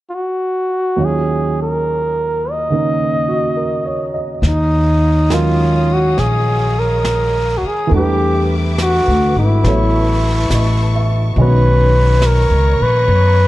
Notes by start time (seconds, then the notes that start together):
0.10 F4
0.15 F#4
0.96 D#2 D#3 F#3 C#4
1.01 F4 G#4
1.62 A#4
2.51 D#5
2.70 C#3 D#3 A#3 D#4
3.28 F#4
3.57 A#4
3.85 C#5
4.14 D#5
4.42 D#2 C#5 D#5 F5 D#6, brush sweep, snare
4.47 D#4
5.30 D#3 F#3 G#3 C#4 F4 A#4, snare, hi-hat pedal
5.93 F#4
6.18 A#1 G#4, brush sweep, snare
6.79 A#4
7.05 snare, hi-hat pedal
7.58 F#4
7.63 muted upright bass stroke
7.67 G#4
7.87 E2 E3 A3 B4 E5 D6
7.92 G3 D4 G4, brush sweep
7.98 B4
8.78 F#4, snare, hi-hat pedal
9.08 D2
9.36 G#1 E4
9.64 A1 F#3 B3 E4 A4 A5 C#6, brush sweep, snare
9.68 C#5
10.50 A1 D#5, snare, hi-hat pedal
10.95 E5
11.36 B1 D#3 G#3 C#4 C#5 D#5 A#5 C#6, brush sweep
11.41 B3 F#4 B4
12.22 snare, hi-hat pedal
12.26 A#4
12.50 C#2
12.80 A#1 B4
13.08 F#2, brush sweep